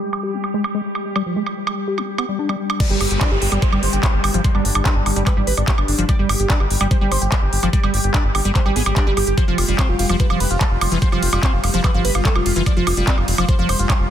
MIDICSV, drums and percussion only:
0, 0, Header, 1, 2, 480
1, 0, Start_track
1, 0, Tempo, 410959
1, 1351, Time_signature, 4, 2, 24, 8
1, 16471, End_track
2, 0, Start_track
2, 0, Title_t, "Drums"
2, 151, Note_on_c, 9, 76, 75
2, 268, Note_off_c, 9, 76, 0
2, 511, Note_on_c, 9, 76, 39
2, 628, Note_off_c, 9, 76, 0
2, 751, Note_on_c, 9, 76, 78
2, 868, Note_off_c, 9, 76, 0
2, 1111, Note_on_c, 9, 76, 38
2, 1228, Note_off_c, 9, 76, 0
2, 1351, Note_on_c, 9, 76, 80
2, 1468, Note_off_c, 9, 76, 0
2, 1711, Note_on_c, 9, 76, 41
2, 1828, Note_off_c, 9, 76, 0
2, 1951, Note_on_c, 9, 76, 79
2, 2068, Note_off_c, 9, 76, 0
2, 2311, Note_on_c, 9, 76, 40
2, 2428, Note_off_c, 9, 76, 0
2, 2551, Note_on_c, 9, 76, 83
2, 2668, Note_off_c, 9, 76, 0
2, 2911, Note_on_c, 9, 76, 41
2, 3028, Note_off_c, 9, 76, 0
2, 3151, Note_on_c, 9, 76, 75
2, 3268, Note_off_c, 9, 76, 0
2, 3271, Note_on_c, 9, 36, 117
2, 3271, Note_on_c, 9, 42, 69
2, 3271, Note_on_c, 9, 49, 108
2, 3388, Note_off_c, 9, 36, 0
2, 3388, Note_off_c, 9, 42, 0
2, 3388, Note_off_c, 9, 49, 0
2, 3511, Note_on_c, 9, 46, 103
2, 3511, Note_on_c, 9, 76, 36
2, 3628, Note_off_c, 9, 46, 0
2, 3628, Note_off_c, 9, 76, 0
2, 3631, Note_on_c, 9, 42, 70
2, 3748, Note_off_c, 9, 42, 0
2, 3751, Note_on_c, 9, 36, 127
2, 3751, Note_on_c, 9, 39, 125
2, 3751, Note_on_c, 9, 42, 68
2, 3751, Note_on_c, 9, 76, 77
2, 3868, Note_off_c, 9, 36, 0
2, 3868, Note_off_c, 9, 39, 0
2, 3868, Note_off_c, 9, 42, 0
2, 3868, Note_off_c, 9, 76, 0
2, 3991, Note_on_c, 9, 46, 92
2, 4108, Note_off_c, 9, 46, 0
2, 4111, Note_on_c, 9, 42, 70
2, 4111, Note_on_c, 9, 76, 40
2, 4228, Note_off_c, 9, 42, 0
2, 4228, Note_off_c, 9, 76, 0
2, 4231, Note_on_c, 9, 36, 127
2, 4231, Note_on_c, 9, 42, 69
2, 4348, Note_off_c, 9, 36, 0
2, 4348, Note_off_c, 9, 42, 0
2, 4351, Note_on_c, 9, 76, 77
2, 4468, Note_off_c, 9, 76, 0
2, 4471, Note_on_c, 9, 46, 108
2, 4588, Note_off_c, 9, 46, 0
2, 4591, Note_on_c, 9, 42, 71
2, 4708, Note_off_c, 9, 42, 0
2, 4711, Note_on_c, 9, 36, 118
2, 4711, Note_on_c, 9, 39, 127
2, 4711, Note_on_c, 9, 42, 72
2, 4711, Note_on_c, 9, 76, 38
2, 4828, Note_off_c, 9, 36, 0
2, 4828, Note_off_c, 9, 39, 0
2, 4828, Note_off_c, 9, 42, 0
2, 4828, Note_off_c, 9, 76, 0
2, 4951, Note_on_c, 9, 46, 94
2, 4951, Note_on_c, 9, 76, 82
2, 5068, Note_off_c, 9, 46, 0
2, 5068, Note_off_c, 9, 76, 0
2, 5071, Note_on_c, 9, 42, 68
2, 5188, Note_off_c, 9, 42, 0
2, 5191, Note_on_c, 9, 36, 117
2, 5191, Note_on_c, 9, 42, 67
2, 5308, Note_off_c, 9, 36, 0
2, 5308, Note_off_c, 9, 42, 0
2, 5312, Note_on_c, 9, 76, 38
2, 5428, Note_off_c, 9, 76, 0
2, 5431, Note_on_c, 9, 46, 114
2, 5548, Note_off_c, 9, 46, 0
2, 5551, Note_on_c, 9, 42, 66
2, 5551, Note_on_c, 9, 76, 81
2, 5668, Note_off_c, 9, 42, 0
2, 5668, Note_off_c, 9, 76, 0
2, 5671, Note_on_c, 9, 36, 127
2, 5672, Note_on_c, 9, 39, 123
2, 5672, Note_on_c, 9, 42, 67
2, 5788, Note_off_c, 9, 36, 0
2, 5788, Note_off_c, 9, 39, 0
2, 5788, Note_off_c, 9, 42, 0
2, 5912, Note_on_c, 9, 46, 92
2, 5912, Note_on_c, 9, 76, 38
2, 6028, Note_off_c, 9, 46, 0
2, 6028, Note_off_c, 9, 76, 0
2, 6031, Note_on_c, 9, 42, 69
2, 6148, Note_off_c, 9, 42, 0
2, 6151, Note_on_c, 9, 36, 127
2, 6151, Note_on_c, 9, 39, 67
2, 6151, Note_on_c, 9, 42, 69
2, 6151, Note_on_c, 9, 76, 76
2, 6268, Note_off_c, 9, 36, 0
2, 6268, Note_off_c, 9, 39, 0
2, 6268, Note_off_c, 9, 42, 0
2, 6268, Note_off_c, 9, 76, 0
2, 6391, Note_on_c, 9, 46, 110
2, 6508, Note_off_c, 9, 46, 0
2, 6511, Note_on_c, 9, 42, 70
2, 6511, Note_on_c, 9, 76, 39
2, 6628, Note_off_c, 9, 42, 0
2, 6628, Note_off_c, 9, 76, 0
2, 6631, Note_on_c, 9, 36, 123
2, 6631, Note_on_c, 9, 39, 127
2, 6631, Note_on_c, 9, 42, 70
2, 6748, Note_off_c, 9, 36, 0
2, 6748, Note_off_c, 9, 39, 0
2, 6748, Note_off_c, 9, 42, 0
2, 6751, Note_on_c, 9, 76, 81
2, 6868, Note_off_c, 9, 76, 0
2, 6871, Note_on_c, 9, 46, 102
2, 6988, Note_off_c, 9, 46, 0
2, 6991, Note_on_c, 9, 42, 68
2, 7108, Note_off_c, 9, 42, 0
2, 7111, Note_on_c, 9, 36, 121
2, 7111, Note_on_c, 9, 42, 69
2, 7111, Note_on_c, 9, 76, 39
2, 7228, Note_off_c, 9, 36, 0
2, 7228, Note_off_c, 9, 42, 0
2, 7228, Note_off_c, 9, 76, 0
2, 7352, Note_on_c, 9, 46, 113
2, 7352, Note_on_c, 9, 76, 80
2, 7468, Note_off_c, 9, 46, 0
2, 7468, Note_off_c, 9, 76, 0
2, 7472, Note_on_c, 9, 42, 68
2, 7588, Note_off_c, 9, 42, 0
2, 7591, Note_on_c, 9, 36, 127
2, 7592, Note_on_c, 9, 39, 120
2, 7592, Note_on_c, 9, 42, 64
2, 7708, Note_off_c, 9, 36, 0
2, 7708, Note_off_c, 9, 39, 0
2, 7708, Note_off_c, 9, 42, 0
2, 7711, Note_on_c, 9, 76, 39
2, 7828, Note_off_c, 9, 76, 0
2, 7832, Note_on_c, 9, 46, 101
2, 7948, Note_off_c, 9, 46, 0
2, 7951, Note_on_c, 9, 42, 64
2, 7951, Note_on_c, 9, 76, 78
2, 8068, Note_off_c, 9, 42, 0
2, 8068, Note_off_c, 9, 76, 0
2, 8071, Note_on_c, 9, 36, 127
2, 8071, Note_on_c, 9, 42, 66
2, 8188, Note_off_c, 9, 36, 0
2, 8188, Note_off_c, 9, 42, 0
2, 8311, Note_on_c, 9, 46, 107
2, 8311, Note_on_c, 9, 76, 39
2, 8428, Note_off_c, 9, 46, 0
2, 8428, Note_off_c, 9, 76, 0
2, 8431, Note_on_c, 9, 42, 66
2, 8548, Note_off_c, 9, 42, 0
2, 8551, Note_on_c, 9, 36, 126
2, 8551, Note_on_c, 9, 39, 125
2, 8551, Note_on_c, 9, 42, 65
2, 8551, Note_on_c, 9, 76, 79
2, 8668, Note_off_c, 9, 36, 0
2, 8668, Note_off_c, 9, 39, 0
2, 8668, Note_off_c, 9, 42, 0
2, 8668, Note_off_c, 9, 76, 0
2, 8791, Note_on_c, 9, 46, 100
2, 8908, Note_off_c, 9, 46, 0
2, 8911, Note_on_c, 9, 42, 65
2, 8911, Note_on_c, 9, 76, 41
2, 9028, Note_off_c, 9, 42, 0
2, 9028, Note_off_c, 9, 76, 0
2, 9031, Note_on_c, 9, 36, 122
2, 9032, Note_on_c, 9, 42, 65
2, 9148, Note_off_c, 9, 36, 0
2, 9148, Note_off_c, 9, 42, 0
2, 9152, Note_on_c, 9, 76, 80
2, 9268, Note_off_c, 9, 76, 0
2, 9271, Note_on_c, 9, 46, 108
2, 9388, Note_off_c, 9, 46, 0
2, 9392, Note_on_c, 9, 42, 64
2, 9508, Note_off_c, 9, 42, 0
2, 9511, Note_on_c, 9, 36, 124
2, 9511, Note_on_c, 9, 39, 122
2, 9511, Note_on_c, 9, 42, 66
2, 9511, Note_on_c, 9, 76, 40
2, 9628, Note_off_c, 9, 36, 0
2, 9628, Note_off_c, 9, 39, 0
2, 9628, Note_off_c, 9, 42, 0
2, 9628, Note_off_c, 9, 76, 0
2, 9751, Note_on_c, 9, 46, 95
2, 9751, Note_on_c, 9, 76, 80
2, 9868, Note_off_c, 9, 46, 0
2, 9868, Note_off_c, 9, 76, 0
2, 9871, Note_on_c, 9, 42, 64
2, 9988, Note_off_c, 9, 42, 0
2, 9991, Note_on_c, 9, 36, 127
2, 9991, Note_on_c, 9, 39, 61
2, 9991, Note_on_c, 9, 42, 63
2, 10108, Note_off_c, 9, 36, 0
2, 10108, Note_off_c, 9, 39, 0
2, 10108, Note_off_c, 9, 42, 0
2, 10111, Note_on_c, 9, 76, 42
2, 10228, Note_off_c, 9, 76, 0
2, 10231, Note_on_c, 9, 46, 112
2, 10348, Note_off_c, 9, 46, 0
2, 10351, Note_on_c, 9, 42, 63
2, 10351, Note_on_c, 9, 76, 84
2, 10468, Note_off_c, 9, 42, 0
2, 10468, Note_off_c, 9, 76, 0
2, 10471, Note_on_c, 9, 36, 124
2, 10471, Note_on_c, 9, 39, 119
2, 10471, Note_on_c, 9, 42, 67
2, 10588, Note_off_c, 9, 36, 0
2, 10588, Note_off_c, 9, 39, 0
2, 10588, Note_off_c, 9, 42, 0
2, 10711, Note_on_c, 9, 46, 101
2, 10711, Note_on_c, 9, 76, 43
2, 10828, Note_off_c, 9, 46, 0
2, 10828, Note_off_c, 9, 76, 0
2, 10831, Note_on_c, 9, 42, 65
2, 10948, Note_off_c, 9, 42, 0
2, 10951, Note_on_c, 9, 36, 115
2, 10951, Note_on_c, 9, 42, 65
2, 11068, Note_off_c, 9, 36, 0
2, 11068, Note_off_c, 9, 42, 0
2, 11191, Note_on_c, 9, 46, 111
2, 11191, Note_on_c, 9, 51, 77
2, 11191, Note_on_c, 9, 76, 44
2, 11308, Note_off_c, 9, 46, 0
2, 11308, Note_off_c, 9, 51, 0
2, 11308, Note_off_c, 9, 76, 0
2, 11311, Note_on_c, 9, 42, 64
2, 11428, Note_off_c, 9, 42, 0
2, 11431, Note_on_c, 9, 36, 126
2, 11431, Note_on_c, 9, 39, 113
2, 11431, Note_on_c, 9, 42, 65
2, 11431, Note_on_c, 9, 76, 85
2, 11548, Note_off_c, 9, 36, 0
2, 11548, Note_off_c, 9, 39, 0
2, 11548, Note_off_c, 9, 42, 0
2, 11548, Note_off_c, 9, 76, 0
2, 11671, Note_on_c, 9, 46, 94
2, 11671, Note_on_c, 9, 51, 81
2, 11788, Note_off_c, 9, 46, 0
2, 11788, Note_off_c, 9, 51, 0
2, 11791, Note_on_c, 9, 42, 68
2, 11791, Note_on_c, 9, 76, 45
2, 11908, Note_off_c, 9, 42, 0
2, 11908, Note_off_c, 9, 76, 0
2, 11911, Note_on_c, 9, 36, 125
2, 11911, Note_on_c, 9, 42, 65
2, 12028, Note_off_c, 9, 36, 0
2, 12028, Note_off_c, 9, 42, 0
2, 12031, Note_on_c, 9, 76, 85
2, 12148, Note_off_c, 9, 76, 0
2, 12151, Note_on_c, 9, 46, 106
2, 12151, Note_on_c, 9, 51, 78
2, 12268, Note_off_c, 9, 46, 0
2, 12268, Note_off_c, 9, 51, 0
2, 12271, Note_on_c, 9, 42, 66
2, 12388, Note_off_c, 9, 42, 0
2, 12391, Note_on_c, 9, 36, 117
2, 12391, Note_on_c, 9, 39, 121
2, 12391, Note_on_c, 9, 42, 67
2, 12391, Note_on_c, 9, 76, 42
2, 12508, Note_off_c, 9, 36, 0
2, 12508, Note_off_c, 9, 39, 0
2, 12508, Note_off_c, 9, 42, 0
2, 12508, Note_off_c, 9, 76, 0
2, 12631, Note_on_c, 9, 46, 99
2, 12631, Note_on_c, 9, 51, 85
2, 12631, Note_on_c, 9, 76, 86
2, 12748, Note_off_c, 9, 46, 0
2, 12748, Note_off_c, 9, 51, 0
2, 12748, Note_off_c, 9, 76, 0
2, 12751, Note_on_c, 9, 42, 65
2, 12868, Note_off_c, 9, 42, 0
2, 12871, Note_on_c, 9, 36, 113
2, 12871, Note_on_c, 9, 42, 65
2, 12988, Note_off_c, 9, 36, 0
2, 12988, Note_off_c, 9, 42, 0
2, 12991, Note_on_c, 9, 76, 42
2, 13108, Note_off_c, 9, 76, 0
2, 13111, Note_on_c, 9, 46, 107
2, 13111, Note_on_c, 9, 51, 83
2, 13228, Note_off_c, 9, 46, 0
2, 13228, Note_off_c, 9, 51, 0
2, 13231, Note_on_c, 9, 42, 68
2, 13231, Note_on_c, 9, 76, 89
2, 13348, Note_off_c, 9, 42, 0
2, 13348, Note_off_c, 9, 76, 0
2, 13351, Note_on_c, 9, 36, 118
2, 13351, Note_on_c, 9, 39, 115
2, 13351, Note_on_c, 9, 42, 64
2, 13468, Note_off_c, 9, 36, 0
2, 13468, Note_off_c, 9, 39, 0
2, 13468, Note_off_c, 9, 42, 0
2, 13591, Note_on_c, 9, 46, 90
2, 13591, Note_on_c, 9, 51, 86
2, 13591, Note_on_c, 9, 76, 41
2, 13708, Note_off_c, 9, 46, 0
2, 13708, Note_off_c, 9, 51, 0
2, 13708, Note_off_c, 9, 76, 0
2, 13711, Note_on_c, 9, 42, 69
2, 13828, Note_off_c, 9, 42, 0
2, 13831, Note_on_c, 9, 36, 118
2, 13831, Note_on_c, 9, 39, 62
2, 13831, Note_on_c, 9, 42, 70
2, 13831, Note_on_c, 9, 76, 86
2, 13948, Note_off_c, 9, 36, 0
2, 13948, Note_off_c, 9, 39, 0
2, 13948, Note_off_c, 9, 42, 0
2, 13948, Note_off_c, 9, 76, 0
2, 14071, Note_on_c, 9, 46, 107
2, 14071, Note_on_c, 9, 51, 84
2, 14188, Note_off_c, 9, 46, 0
2, 14188, Note_off_c, 9, 51, 0
2, 14191, Note_on_c, 9, 42, 67
2, 14191, Note_on_c, 9, 76, 44
2, 14308, Note_off_c, 9, 42, 0
2, 14308, Note_off_c, 9, 76, 0
2, 14311, Note_on_c, 9, 36, 115
2, 14311, Note_on_c, 9, 39, 117
2, 14311, Note_on_c, 9, 42, 68
2, 14428, Note_off_c, 9, 36, 0
2, 14428, Note_off_c, 9, 39, 0
2, 14428, Note_off_c, 9, 42, 0
2, 14431, Note_on_c, 9, 76, 87
2, 14548, Note_off_c, 9, 76, 0
2, 14551, Note_on_c, 9, 46, 92
2, 14551, Note_on_c, 9, 51, 86
2, 14668, Note_off_c, 9, 46, 0
2, 14668, Note_off_c, 9, 51, 0
2, 14671, Note_on_c, 9, 42, 69
2, 14788, Note_off_c, 9, 42, 0
2, 14791, Note_on_c, 9, 36, 108
2, 14791, Note_on_c, 9, 42, 72
2, 14791, Note_on_c, 9, 76, 41
2, 14908, Note_off_c, 9, 36, 0
2, 14908, Note_off_c, 9, 42, 0
2, 14908, Note_off_c, 9, 76, 0
2, 15031, Note_on_c, 9, 46, 104
2, 15031, Note_on_c, 9, 51, 86
2, 15031, Note_on_c, 9, 76, 84
2, 15148, Note_off_c, 9, 46, 0
2, 15148, Note_off_c, 9, 51, 0
2, 15148, Note_off_c, 9, 76, 0
2, 15151, Note_on_c, 9, 42, 70
2, 15268, Note_off_c, 9, 42, 0
2, 15271, Note_on_c, 9, 36, 118
2, 15271, Note_on_c, 9, 39, 114
2, 15271, Note_on_c, 9, 42, 68
2, 15388, Note_off_c, 9, 36, 0
2, 15388, Note_off_c, 9, 39, 0
2, 15388, Note_off_c, 9, 42, 0
2, 15391, Note_on_c, 9, 76, 40
2, 15508, Note_off_c, 9, 76, 0
2, 15511, Note_on_c, 9, 46, 90
2, 15511, Note_on_c, 9, 51, 81
2, 15628, Note_off_c, 9, 46, 0
2, 15628, Note_off_c, 9, 51, 0
2, 15631, Note_on_c, 9, 42, 70
2, 15631, Note_on_c, 9, 76, 85
2, 15748, Note_off_c, 9, 42, 0
2, 15748, Note_off_c, 9, 76, 0
2, 15751, Note_on_c, 9, 36, 122
2, 15751, Note_on_c, 9, 42, 67
2, 15868, Note_off_c, 9, 36, 0
2, 15868, Note_off_c, 9, 42, 0
2, 15991, Note_on_c, 9, 46, 100
2, 15991, Note_on_c, 9, 51, 85
2, 15991, Note_on_c, 9, 76, 43
2, 16108, Note_off_c, 9, 46, 0
2, 16108, Note_off_c, 9, 51, 0
2, 16108, Note_off_c, 9, 76, 0
2, 16111, Note_on_c, 9, 42, 70
2, 16228, Note_off_c, 9, 42, 0
2, 16231, Note_on_c, 9, 36, 116
2, 16231, Note_on_c, 9, 39, 120
2, 16231, Note_on_c, 9, 42, 74
2, 16231, Note_on_c, 9, 76, 87
2, 16348, Note_off_c, 9, 36, 0
2, 16348, Note_off_c, 9, 39, 0
2, 16348, Note_off_c, 9, 42, 0
2, 16348, Note_off_c, 9, 76, 0
2, 16471, End_track
0, 0, End_of_file